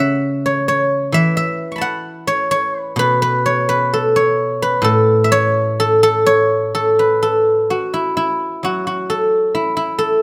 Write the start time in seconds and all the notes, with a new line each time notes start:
Already playing: C#3 C#5 F#5
0.00 E5
0.46 C#5
0.68 C#5
1.12 E3 E5
1.37 E5
1.72 C#6
1.76 A5 B5
1.81 F#5
2.27 C#5
2.51 C#5
2.79 B4
2.96 B2 B4
3.22 B4
3.46 C#5
3.69 B4
3.93 A4
4.16 C#5
4.62 B4
4.82 A2 A4
5.24 E5
5.32 C#5
5.80 A4
6.03 A4
6.26 C#5
6.75 A4
6.99 B4
7.23 A4
7.70 F#4
7.94 E4
8.17 E4
8.63 F#3 F#4
8.87 F#4
9.10 A4
9.55 E4
9.77 E4
9.98 A4